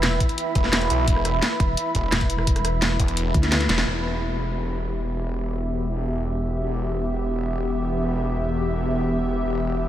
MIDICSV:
0, 0, Header, 1, 6, 480
1, 0, Start_track
1, 0, Key_signature, 1, "minor"
1, 0, Tempo, 348837
1, 1482, Time_signature, 4, 2, 24, 8
1, 13600, End_track
2, 0, Start_track
2, 0, Title_t, "Ambient pad"
2, 0, Program_c, 0, 92
2, 0, Note_on_c, 0, 64, 84
2, 0, Note_on_c, 0, 71, 76
2, 0, Note_on_c, 0, 76, 80
2, 0, Note_on_c, 0, 83, 94
2, 5266, Note_off_c, 0, 76, 0
2, 5267, Note_off_c, 0, 64, 0
2, 5267, Note_off_c, 0, 71, 0
2, 5291, Note_off_c, 0, 83, 0
2, 5320, Note_on_c, 0, 64, 80
2, 5321, Note_on_c, 0, 71, 72
2, 5321, Note_on_c, 0, 79, 89
2, 5322, Note_on_c, 0, 78, 75
2, 12947, Note_off_c, 0, 78, 0
2, 12971, Note_off_c, 0, 79, 0
2, 13004, Note_on_c, 0, 76, 72
2, 13004, Note_on_c, 0, 81, 90
2, 13600, Note_off_c, 0, 64, 0
2, 13600, Note_off_c, 0, 71, 0
2, 13600, Note_off_c, 0, 76, 0
2, 13600, Note_off_c, 0, 81, 0
2, 13600, End_track
3, 0, Start_track
3, 0, Title_t, "Analog synth pad"
3, 0, Program_c, 1, 89
3, 5326, Note_on_c, 1, 59, 79
3, 5629, Note_on_c, 1, 67, 81
3, 6626, Note_on_c, 1, 76, 82
3, 13600, Note_off_c, 1, 59, 0
3, 13600, Note_off_c, 1, 67, 0
3, 13600, Note_off_c, 1, 76, 0
3, 13600, End_track
4, 0, Start_track
4, 0, Title_t, "Detuned saw bass"
4, 0, Program_c, 2, 39
4, 761, Note_on_c, 2, 28, 93
4, 982, Note_off_c, 2, 28, 0
4, 1000, Note_on_c, 2, 28, 101
4, 1222, Note_off_c, 2, 28, 0
4, 1240, Note_on_c, 2, 35, 100
4, 1462, Note_off_c, 2, 35, 0
4, 1481, Note_on_c, 2, 28, 96
4, 1942, Note_off_c, 2, 28, 0
4, 2682, Note_on_c, 2, 28, 96
4, 2903, Note_off_c, 2, 28, 0
4, 4122, Note_on_c, 2, 28, 97
4, 4583, Note_off_c, 2, 28, 0
4, 5322, Note_on_c, 2, 28, 82
4, 12978, Note_off_c, 2, 28, 0
4, 13003, Note_on_c, 2, 28, 86
4, 13600, Note_off_c, 2, 28, 0
4, 13600, End_track
5, 0, Start_track
5, 0, Title_t, "Wobble bass"
5, 0, Program_c, 3, 39
5, 0, Note_on_c, 3, 28, 100
5, 263, Note_off_c, 3, 28, 0
5, 2202, Note_on_c, 3, 28, 98
5, 2423, Note_off_c, 3, 28, 0
5, 2922, Note_on_c, 3, 28, 97
5, 4103, Note_off_c, 3, 28, 0
5, 4602, Note_on_c, 3, 38, 103
5, 5063, Note_off_c, 3, 38, 0
5, 5081, Note_on_c, 3, 28, 100
5, 5302, Note_off_c, 3, 28, 0
5, 13600, End_track
6, 0, Start_track
6, 0, Title_t, "Drums"
6, 41, Note_on_c, 9, 38, 119
6, 41, Note_on_c, 9, 42, 95
6, 179, Note_off_c, 9, 38, 0
6, 179, Note_off_c, 9, 42, 0
6, 281, Note_on_c, 9, 36, 106
6, 281, Note_on_c, 9, 42, 67
6, 402, Note_off_c, 9, 42, 0
6, 402, Note_on_c, 9, 42, 39
6, 419, Note_off_c, 9, 36, 0
6, 521, Note_off_c, 9, 42, 0
6, 521, Note_on_c, 9, 42, 95
6, 659, Note_off_c, 9, 42, 0
6, 761, Note_on_c, 9, 36, 103
6, 762, Note_on_c, 9, 42, 65
6, 881, Note_on_c, 9, 38, 37
6, 899, Note_off_c, 9, 36, 0
6, 899, Note_off_c, 9, 42, 0
6, 1001, Note_off_c, 9, 38, 0
6, 1001, Note_on_c, 9, 38, 118
6, 1001, Note_on_c, 9, 42, 98
6, 1121, Note_off_c, 9, 42, 0
6, 1121, Note_on_c, 9, 42, 37
6, 1139, Note_off_c, 9, 38, 0
6, 1241, Note_off_c, 9, 42, 0
6, 1241, Note_on_c, 9, 42, 66
6, 1378, Note_off_c, 9, 42, 0
6, 1481, Note_on_c, 9, 36, 116
6, 1481, Note_on_c, 9, 42, 97
6, 1601, Note_on_c, 9, 37, 47
6, 1618, Note_off_c, 9, 42, 0
6, 1619, Note_off_c, 9, 36, 0
6, 1720, Note_off_c, 9, 37, 0
6, 1720, Note_on_c, 9, 37, 55
6, 1720, Note_on_c, 9, 42, 69
6, 1858, Note_off_c, 9, 37, 0
6, 1858, Note_off_c, 9, 42, 0
6, 1961, Note_on_c, 9, 38, 113
6, 1961, Note_on_c, 9, 42, 96
6, 2098, Note_off_c, 9, 38, 0
6, 2098, Note_off_c, 9, 42, 0
6, 2201, Note_on_c, 9, 42, 69
6, 2202, Note_on_c, 9, 36, 105
6, 2339, Note_off_c, 9, 36, 0
6, 2339, Note_off_c, 9, 42, 0
6, 2440, Note_on_c, 9, 42, 99
6, 2578, Note_off_c, 9, 42, 0
6, 2680, Note_on_c, 9, 42, 70
6, 2682, Note_on_c, 9, 36, 63
6, 2818, Note_off_c, 9, 42, 0
6, 2820, Note_off_c, 9, 36, 0
6, 2921, Note_on_c, 9, 38, 113
6, 2921, Note_on_c, 9, 42, 102
6, 3042, Note_off_c, 9, 42, 0
6, 3042, Note_on_c, 9, 36, 100
6, 3042, Note_on_c, 9, 42, 40
6, 3059, Note_off_c, 9, 38, 0
6, 3161, Note_off_c, 9, 42, 0
6, 3161, Note_on_c, 9, 42, 70
6, 3180, Note_off_c, 9, 36, 0
6, 3281, Note_on_c, 9, 37, 58
6, 3299, Note_off_c, 9, 42, 0
6, 3401, Note_on_c, 9, 42, 96
6, 3402, Note_on_c, 9, 36, 120
6, 3419, Note_off_c, 9, 37, 0
6, 3522, Note_off_c, 9, 42, 0
6, 3522, Note_on_c, 9, 37, 49
6, 3522, Note_on_c, 9, 42, 41
6, 3540, Note_off_c, 9, 36, 0
6, 3641, Note_off_c, 9, 37, 0
6, 3641, Note_off_c, 9, 42, 0
6, 3641, Note_on_c, 9, 37, 57
6, 3641, Note_on_c, 9, 42, 67
6, 3779, Note_off_c, 9, 37, 0
6, 3779, Note_off_c, 9, 42, 0
6, 3881, Note_on_c, 9, 38, 118
6, 3881, Note_on_c, 9, 42, 102
6, 4019, Note_off_c, 9, 38, 0
6, 4019, Note_off_c, 9, 42, 0
6, 4122, Note_on_c, 9, 36, 105
6, 4122, Note_on_c, 9, 42, 71
6, 4242, Note_off_c, 9, 42, 0
6, 4242, Note_on_c, 9, 42, 40
6, 4260, Note_off_c, 9, 36, 0
6, 4362, Note_off_c, 9, 42, 0
6, 4362, Note_on_c, 9, 42, 96
6, 4499, Note_off_c, 9, 42, 0
6, 4602, Note_on_c, 9, 36, 110
6, 4602, Note_on_c, 9, 42, 69
6, 4721, Note_off_c, 9, 42, 0
6, 4721, Note_on_c, 9, 38, 36
6, 4721, Note_on_c, 9, 42, 39
6, 4740, Note_off_c, 9, 36, 0
6, 4841, Note_off_c, 9, 38, 0
6, 4841, Note_off_c, 9, 42, 0
6, 4841, Note_on_c, 9, 38, 116
6, 4841, Note_on_c, 9, 42, 96
6, 4961, Note_off_c, 9, 38, 0
6, 4961, Note_off_c, 9, 42, 0
6, 4961, Note_on_c, 9, 38, 52
6, 4961, Note_on_c, 9, 42, 40
6, 5081, Note_off_c, 9, 38, 0
6, 5081, Note_off_c, 9, 42, 0
6, 5081, Note_on_c, 9, 38, 82
6, 5081, Note_on_c, 9, 42, 72
6, 5201, Note_off_c, 9, 38, 0
6, 5201, Note_on_c, 9, 38, 86
6, 5218, Note_off_c, 9, 42, 0
6, 5338, Note_off_c, 9, 38, 0
6, 13600, End_track
0, 0, End_of_file